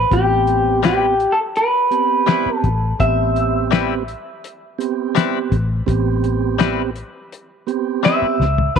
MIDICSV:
0, 0, Header, 1, 7, 480
1, 0, Start_track
1, 0, Key_signature, 0, "minor"
1, 0, Tempo, 721154
1, 74, Time_signature, 4, 2, 24, 8
1, 5853, End_track
2, 0, Start_track
2, 0, Title_t, "Clean electric guitar"
2, 0, Program_c, 0, 27
2, 0, Note_on_c, 0, 71, 81
2, 85, Note_off_c, 0, 71, 0
2, 88, Note_on_c, 0, 67, 83
2, 534, Note_off_c, 0, 67, 0
2, 566, Note_on_c, 0, 67, 69
2, 881, Note_on_c, 0, 69, 81
2, 890, Note_off_c, 0, 67, 0
2, 923, Note_off_c, 0, 69, 0
2, 1044, Note_on_c, 0, 71, 79
2, 1703, Note_off_c, 0, 71, 0
2, 1703, Note_on_c, 0, 69, 79
2, 1996, Note_off_c, 0, 69, 0
2, 1999, Note_on_c, 0, 76, 80
2, 2929, Note_off_c, 0, 76, 0
2, 5359, Note_on_c, 0, 76, 93
2, 5830, Note_off_c, 0, 76, 0
2, 5833, Note_on_c, 0, 72, 85
2, 5853, Note_off_c, 0, 72, 0
2, 5853, End_track
3, 0, Start_track
3, 0, Title_t, "Clean electric guitar"
3, 0, Program_c, 1, 27
3, 552, Note_on_c, 1, 55, 73
3, 556, Note_on_c, 1, 60, 74
3, 562, Note_on_c, 1, 64, 80
3, 564, Note_on_c, 1, 71, 83
3, 698, Note_off_c, 1, 55, 0
3, 700, Note_off_c, 1, 60, 0
3, 703, Note_off_c, 1, 64, 0
3, 704, Note_off_c, 1, 71, 0
3, 1508, Note_on_c, 1, 55, 65
3, 1513, Note_on_c, 1, 60, 65
3, 1516, Note_on_c, 1, 64, 79
3, 1519, Note_on_c, 1, 71, 70
3, 1656, Note_off_c, 1, 55, 0
3, 1659, Note_off_c, 1, 60, 0
3, 1660, Note_off_c, 1, 64, 0
3, 1662, Note_off_c, 1, 71, 0
3, 2469, Note_on_c, 1, 55, 74
3, 2474, Note_on_c, 1, 60, 74
3, 2476, Note_on_c, 1, 64, 76
3, 2481, Note_on_c, 1, 71, 78
3, 2616, Note_off_c, 1, 55, 0
3, 2619, Note_off_c, 1, 60, 0
3, 2620, Note_off_c, 1, 64, 0
3, 2622, Note_off_c, 1, 71, 0
3, 3427, Note_on_c, 1, 55, 77
3, 3431, Note_on_c, 1, 60, 77
3, 3436, Note_on_c, 1, 64, 81
3, 3442, Note_on_c, 1, 71, 84
3, 3575, Note_off_c, 1, 55, 0
3, 3577, Note_off_c, 1, 60, 0
3, 3580, Note_off_c, 1, 64, 0
3, 3583, Note_off_c, 1, 71, 0
3, 4384, Note_on_c, 1, 55, 80
3, 4389, Note_on_c, 1, 60, 88
3, 4392, Note_on_c, 1, 64, 80
3, 4396, Note_on_c, 1, 71, 90
3, 4533, Note_off_c, 1, 55, 0
3, 4536, Note_off_c, 1, 60, 0
3, 4537, Note_off_c, 1, 64, 0
3, 4539, Note_off_c, 1, 71, 0
3, 5345, Note_on_c, 1, 55, 70
3, 5350, Note_on_c, 1, 60, 72
3, 5355, Note_on_c, 1, 64, 68
3, 5357, Note_on_c, 1, 71, 73
3, 5493, Note_off_c, 1, 55, 0
3, 5496, Note_off_c, 1, 60, 0
3, 5498, Note_off_c, 1, 64, 0
3, 5499, Note_off_c, 1, 71, 0
3, 5853, End_track
4, 0, Start_track
4, 0, Title_t, "Tonewheel organ"
4, 0, Program_c, 2, 16
4, 72, Note_on_c, 2, 59, 66
4, 72, Note_on_c, 2, 60, 57
4, 75, Note_on_c, 2, 67, 69
4, 763, Note_off_c, 2, 59, 0
4, 764, Note_off_c, 2, 60, 0
4, 765, Note_off_c, 2, 67, 0
4, 1269, Note_on_c, 2, 59, 65
4, 1272, Note_on_c, 2, 60, 61
4, 1273, Note_on_c, 2, 67, 69
4, 1789, Note_off_c, 2, 59, 0
4, 1791, Note_off_c, 2, 60, 0
4, 1791, Note_off_c, 2, 67, 0
4, 1992, Note_on_c, 2, 59, 69
4, 1996, Note_on_c, 2, 60, 55
4, 1997, Note_on_c, 2, 67, 69
4, 2683, Note_off_c, 2, 59, 0
4, 2685, Note_off_c, 2, 60, 0
4, 2685, Note_off_c, 2, 67, 0
4, 3185, Note_on_c, 2, 59, 73
4, 3185, Note_on_c, 2, 60, 75
4, 3185, Note_on_c, 2, 67, 81
4, 3707, Note_off_c, 2, 59, 0
4, 3707, Note_off_c, 2, 60, 0
4, 3707, Note_off_c, 2, 67, 0
4, 3903, Note_on_c, 2, 59, 79
4, 3904, Note_on_c, 2, 60, 74
4, 3904, Note_on_c, 2, 67, 89
4, 4597, Note_off_c, 2, 59, 0
4, 4598, Note_off_c, 2, 60, 0
4, 4598, Note_off_c, 2, 67, 0
4, 5103, Note_on_c, 2, 59, 73
4, 5107, Note_on_c, 2, 60, 70
4, 5107, Note_on_c, 2, 67, 90
4, 5625, Note_off_c, 2, 59, 0
4, 5626, Note_off_c, 2, 67, 0
4, 5627, Note_off_c, 2, 60, 0
4, 5829, Note_on_c, 2, 60, 62
4, 5832, Note_on_c, 2, 64, 60
4, 5833, Note_on_c, 2, 65, 70
4, 5853, Note_off_c, 2, 60, 0
4, 5853, Note_off_c, 2, 64, 0
4, 5853, Note_off_c, 2, 65, 0
4, 5853, End_track
5, 0, Start_track
5, 0, Title_t, "Fingered electric bass"
5, 0, Program_c, 3, 33
5, 77, Note_on_c, 3, 33, 92
5, 831, Note_off_c, 3, 33, 0
5, 1756, Note_on_c, 3, 33, 84
5, 1944, Note_off_c, 3, 33, 0
5, 1997, Note_on_c, 3, 33, 90
5, 2750, Note_off_c, 3, 33, 0
5, 3673, Note_on_c, 3, 33, 81
5, 3861, Note_off_c, 3, 33, 0
5, 3912, Note_on_c, 3, 33, 102
5, 4666, Note_off_c, 3, 33, 0
5, 5588, Note_on_c, 3, 37, 81
5, 5778, Note_off_c, 3, 37, 0
5, 5831, Note_on_c, 3, 38, 86
5, 5853, Note_off_c, 3, 38, 0
5, 5853, End_track
6, 0, Start_track
6, 0, Title_t, "Muted fingered electric bass strokes"
6, 1636, Note_on_c, 9, 29, 34
6, 1703, Note_off_c, 9, 29, 0
6, 5470, Note_on_c, 9, 29, 32
6, 5537, Note_off_c, 9, 29, 0
6, 5853, End_track
7, 0, Start_track
7, 0, Title_t, "Drums"
7, 76, Note_on_c, 9, 36, 97
7, 77, Note_on_c, 9, 42, 75
7, 143, Note_off_c, 9, 36, 0
7, 143, Note_off_c, 9, 42, 0
7, 314, Note_on_c, 9, 42, 53
7, 381, Note_off_c, 9, 42, 0
7, 556, Note_on_c, 9, 42, 81
7, 565, Note_on_c, 9, 38, 99
7, 623, Note_off_c, 9, 42, 0
7, 632, Note_off_c, 9, 38, 0
7, 798, Note_on_c, 9, 42, 52
7, 865, Note_off_c, 9, 42, 0
7, 1036, Note_on_c, 9, 42, 72
7, 1103, Note_off_c, 9, 42, 0
7, 1275, Note_on_c, 9, 42, 61
7, 1342, Note_off_c, 9, 42, 0
7, 1512, Note_on_c, 9, 42, 74
7, 1521, Note_on_c, 9, 38, 97
7, 1578, Note_off_c, 9, 42, 0
7, 1588, Note_off_c, 9, 38, 0
7, 1756, Note_on_c, 9, 36, 70
7, 1756, Note_on_c, 9, 42, 48
7, 1822, Note_off_c, 9, 42, 0
7, 1823, Note_off_c, 9, 36, 0
7, 1996, Note_on_c, 9, 36, 101
7, 1997, Note_on_c, 9, 42, 69
7, 2063, Note_off_c, 9, 36, 0
7, 2063, Note_off_c, 9, 42, 0
7, 2237, Note_on_c, 9, 42, 54
7, 2304, Note_off_c, 9, 42, 0
7, 2474, Note_on_c, 9, 42, 78
7, 2483, Note_on_c, 9, 38, 104
7, 2540, Note_off_c, 9, 42, 0
7, 2550, Note_off_c, 9, 38, 0
7, 2717, Note_on_c, 9, 42, 52
7, 2783, Note_off_c, 9, 42, 0
7, 2957, Note_on_c, 9, 42, 79
7, 3023, Note_off_c, 9, 42, 0
7, 3198, Note_on_c, 9, 42, 67
7, 3264, Note_off_c, 9, 42, 0
7, 3434, Note_on_c, 9, 42, 87
7, 3443, Note_on_c, 9, 38, 96
7, 3500, Note_off_c, 9, 42, 0
7, 3510, Note_off_c, 9, 38, 0
7, 3673, Note_on_c, 9, 36, 74
7, 3674, Note_on_c, 9, 42, 54
7, 3739, Note_off_c, 9, 36, 0
7, 3740, Note_off_c, 9, 42, 0
7, 3913, Note_on_c, 9, 36, 100
7, 3913, Note_on_c, 9, 42, 78
7, 3980, Note_off_c, 9, 36, 0
7, 3980, Note_off_c, 9, 42, 0
7, 4152, Note_on_c, 9, 42, 56
7, 4219, Note_off_c, 9, 42, 0
7, 4389, Note_on_c, 9, 42, 85
7, 4398, Note_on_c, 9, 38, 114
7, 4456, Note_off_c, 9, 42, 0
7, 4465, Note_off_c, 9, 38, 0
7, 4630, Note_on_c, 9, 42, 57
7, 4696, Note_off_c, 9, 42, 0
7, 4875, Note_on_c, 9, 42, 78
7, 4942, Note_off_c, 9, 42, 0
7, 5112, Note_on_c, 9, 42, 57
7, 5179, Note_off_c, 9, 42, 0
7, 5353, Note_on_c, 9, 42, 78
7, 5363, Note_on_c, 9, 38, 105
7, 5420, Note_off_c, 9, 42, 0
7, 5429, Note_off_c, 9, 38, 0
7, 5598, Note_on_c, 9, 38, 48
7, 5665, Note_off_c, 9, 38, 0
7, 5713, Note_on_c, 9, 43, 77
7, 5780, Note_off_c, 9, 43, 0
7, 5831, Note_on_c, 9, 36, 96
7, 5832, Note_on_c, 9, 42, 76
7, 5853, Note_off_c, 9, 36, 0
7, 5853, Note_off_c, 9, 42, 0
7, 5853, End_track
0, 0, End_of_file